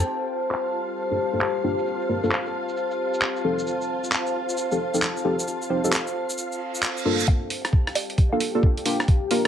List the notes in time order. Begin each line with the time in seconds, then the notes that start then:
Already playing: C5 F5 A5
0.06 F4 G4 F5
0.43 cabasa
0.51 clap, cabasa
0.88 cabasa
0.96 cabasa
1.11 G2 A#3 D4 F4 A4, cabasa
1.33 G2 A#3 D4 F4 A4, cabasa
1.41 clap, cabasa
1.56 cabasa
1.64 G2 A#3 D4 F4 G4
1.78 cabasa
1.86 cabasa
2.01 cabasa
2.09 G2 A#3 D4 F4 A#4
2.23 G2 A#3 D4 F4 A4, cabasa
2.31 clap, cabasa
2.46 cabasa
2.68 cabasa
2.77 cabasa
2.91 cabasa
3.14 cabasa
3.22 clap, cabasa
3.36 cabasa
3.44 F3 C4 D#4 G4 A4
3.59 cabasa
3.67 cabasa
3.81 cabasa
4.04 cabasa
4.12 clap, cabasa
4.26 cabasa
4.49 cabasa
4.57 cabasa
4.71 F3 C4 D#4 G4 A4, cabasa
4.94 F3 C4 D#4 G4 A4, cabasa
5.02 clap, cabasa
5.17 cabasa
5.25 F3 C4 D#4 G4 A4
5.39 cabasa
5.47 cabasa
5.62 cabasa
5.70 F3 C4 D#4 G4 C5
5.84 F3 C4 D#4 G4 A4, cabasa
5.93 clap, cabasa
6.07 cabasa
6.29 cabasa
6.38 reverse cymbal, cabasa
6.52 cabasa
6.75 cabasa
6.83 clap, cabasa
6.97 cabasa
7.05 G2 A#3 D4 F4 A4
7.20 cabasa
7.28 G4 F5 G5, kick, closed hi-hat
7.44 C5
7.50 open hi-hat
7.65 cross-stick, closed hi-hat
7.73 kick
7.87 cross-stick, closed hi-hat
7.95 D5, open hi-hat
8.10 closed hi-hat
8.18 kick, closed hi-hat
8.32 A#3 D4 F4 A4 F5
8.40 open hi-hat
8.55 A#3 D4 F4 A4
8.63 kick
8.77 closed hi-hat
8.86 A#3 D4 F4 G4, open hi-hat
9.00 cross-stick, closed hi-hat
9.08 kick, closed hi-hat
9.31 A#3 D4 F4 A#4, open hi-hat